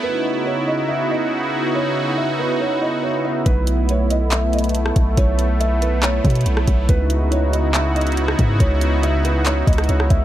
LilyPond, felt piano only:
\new Staff \with { instrumentName = "Felt piano" } { \time 4/4 \key cis \minor \tempo 4 = 140 b'4 cis''8 dis''8 e''8 dis''8 r4 | cis''4 e''8 b'8 cis''8 dis''8 cis''8 e''8 | b'4 cis''8 dis''8 e''8 dis''8 r4 | cis''4 e''8 b'8 cis''2 |
b'4 cis''8 dis''8 e''8 dis''8 r4 | cis''4 e''8 b'8 cis''8 dis''8 cis''8 e''8 | }